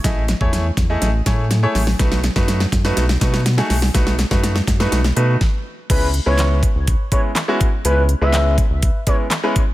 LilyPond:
<<
  \new Staff \with { instrumentName = "Analog synth lead" } { \time 4/4 \key cis \minor \tempo 4 = 123 r1 | r1 | r1 | b'8 r16 cis''8. r4 cis''16 r4 r16 |
b'8 r16 e''8. r4 cis''16 r4 r16 | }
  \new Staff \with { instrumentName = "Grand piano" } { \time 4/4 \key cis \minor <a e' gis' dis''>16 r8 <a e' gis' cis''>8 r8 <a e' gis' dis''>16 r8 <a e' gis' cis''>16 r8 <a e' gis' cis''>16 r8 | <a dis' fis' b'>16 r8 <a dis' fis' b'>8 r8 <a dis' fis' b'>16 r8 <a dis' fis' b'>16 r8 <a dis' fis' gis'>16 r8 | <a dis' fis' b'>16 r8 <a dis' fis' b'>8 r8 <a dis' fis' b'>16 r8 <a dis' fis' b'>16 r4 r16 | <gis b cis' e' b'>16 r8 <gis b cis' e' b'>8. r4 <gis b cis' e' b'>16 r8 <gis b cis' e' fis'>16 r8 |
<gis b cis' e' b'>16 r8 <gis b cis' e' b'>8. r4 <gis b cis' e' b'>16 r8 <gis b cis' e' b'>16 r8 | }
  \new Staff \with { instrumentName = "Analog synth bass" } { \clef bass \time 4/4 \key cis \minor a,,8. e,8. e,8 a,,8 a,4 a,,8 | b,,8. fis,8. fis,8 b,,8 b,4 b,,8 | b,,8. fis,8. fis,8 b,,8 b,8 r4 | cis,8. cis,4 cis,8 r4. r16 |
cis,8. cis,4 cis,8 r4. r16 | }
  \new DrumStaff \with { instrumentName = "Drums" } \drummode { \time 4/4 <hh bd sn>8 <hh sn>16 bd16 <hh sn>8 <hh bd sn>8 <hh sn>8 <hh bd sn>8 <hh sn>8 <hho sn>16 sn16 | <hh bd sn>16 sn16 <hh sn>16 <bd sn>16 <hh sn>16 sn16 <hh bd sn>16 sn16 <hh sn>16 sn16 <hh bd sn>16 sn16 <hh sn>16 sn16 <hho sn>16 sn16 | <hh bd sn>16 sn16 <hh sn>16 <bd sn>16 <hh sn>16 sn16 <hh bd sn>16 sn16 <hh sn>16 sn16 hh8 <bd sn>4 | <cymc hh bd>8 hh8 <hc hh sn>8 <hh bd>8 <hh bd>8 <hh bd>8 <hc hh sn>8 <hh bd>8 |
hh8 hh8 <hc hh sn>8 <hh bd>8 <hh bd>8 <hh bd>8 <hc hh sn>8 <hh bd>8 | }
>>